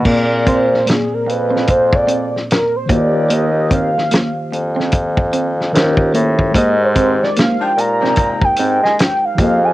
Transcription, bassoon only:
X:1
M:4/4
L:1/16
Q:"Swing 16ths" 1/4=74
K:Eb
V:1 name="Bassoon" clef=bass
B,,4 z2 F,,6 z2 E,,2- | E,,4 z2 F,,6 E,,2 =A,,2 | A,,4 z2 B,,3 z A,, A, z2 F,,2 |]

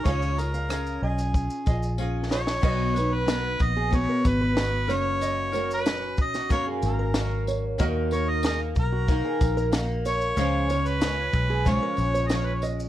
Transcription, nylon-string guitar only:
X:1
M:4/4
L:1/8
Q:1/4=93
K:C#mix
V:1 name="Nylon-string guitar"
[CEGd] [EGd] [CEGd]3 [EGd] [CEGd] [EGd] | [B,,B,DFB] [DFB] [B,DFB]2 [B,,B,DFB]2 [B,DFB] [F,,F,A,CFA]- | [F,,F,A,CFA] [A,CFA] [CF]2 [F,,F,A,CFA]2 [A,CFA]2 | [D,A,DFA]2 [A,DFA]2 [D,A,DFA]2 [A,DFA]2 |
[C,E,G,CEc] [G,CEc] [G,CEc]2 [C,E,G,CEc]2 [G,CEc]2 |]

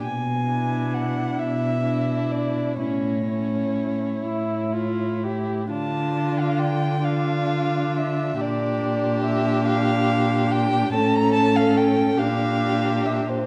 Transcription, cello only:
X:1
M:6/8
L:1/8
Q:3/8=45
K:Dm
V:1 name="Cello" clef=bass
=B,,3 B,,3 | A,,3 A,,3 | D,6 | B,,6 |
A,,3 B,,3 |]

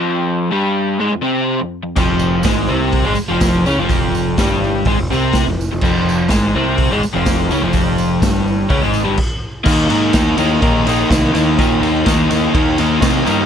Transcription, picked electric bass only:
X:1
M:4/4
L:1/16
Q:1/4=125
K:Fm
V:1 name="Picked electric bass" clef=bass
z16 | F,,,4 A,,,2 C,,3 A,,, z F,,,3 D,, F,,,- | F,,,4 G,,,4 A,,, F,,, C,,3 F,,,2 F,,, | F,,,4 A,,,2 C,,3 A,,, z F,,,3 D,, F,,,- |
F,,,4 G,,,4 D,, A,,,2 G,,, z4 | [K:Eb] E,,2 A,,2 E,,2 E,,2 B,,,4 C,,2 E,,2 | B,,2 E,,2 E,,4 E,,2 E,,2 C,2 G,,2 |]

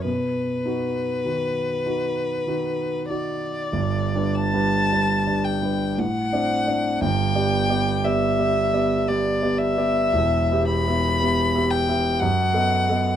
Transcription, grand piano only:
X:1
M:3/4
L:1/8
Q:1/4=56
K:B
V:1 name="Grand piano"
B,, [DF] [D,DF] [DF] [D,DF] [DF] | [K:G] (3[G,,,G,,] [G,DB] [G,DB] (3[G,DB] [G,DB] [G,DB] (3A,, [CDd] [CDd] | (3[G,,,G,,] [B,Gd] [B,Gd] (3[B,Gd] [B,Gd] [B,Gd] (3[B,Gd] [B,Gd] [B,Gd] | (3[E,,,E,,] [B,Ge] [B,Ge] (3[B,Ge] [B,Ge] [B,Ge] (3F,, [B,A^d] [B,Ad] |]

